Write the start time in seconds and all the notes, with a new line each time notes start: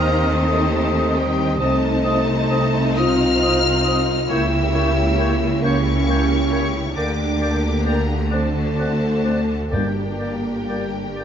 Already playing: D#2 D#3 A#3 C4 D#4 G4 D#5 A#5 F6
0.30 A3 A5 D#6
1.17 G3 G5
1.59 C2 C3 A3 C4 D#4 D#5 A5 D#6
2.04 C4 D#5 D#6
2.50 C4 D#5 D#6
2.96 C4 F4 D#5 D#6 F6
3.43 C4 D#5 D#6
3.84 C4 D#5 D#6
4.29 C#2 C#3 A#3 E4 G4 C#5 E6 G6
4.74 A#3 C#5 G6
5.17 A#3 C#5 G6
5.61 A#3 C#4 E4 G4 C#5 C#6 G6
6.07 A#3 C#5 G6
6.52 A#3 C#5 G6
6.94 D2 D3 A#3 D4 G4 A#4 D5 D6 G6
7.41 A#3 D5 G6
7.85 A#3 D5 A#5 G6
8.30 A3 C4 D4 F#4 C5 D5 A5 F#6
8.77 C4 D5 F#6
9.25 C4 D5 F#6
9.70 G1 G2 A#3 D4 G4 A#4 D5 G5 G6
9.75 G3
10.19 A#3 D5 G6
10.68 A#3 D5 G6
11.16 D5 G6
11.20 A#3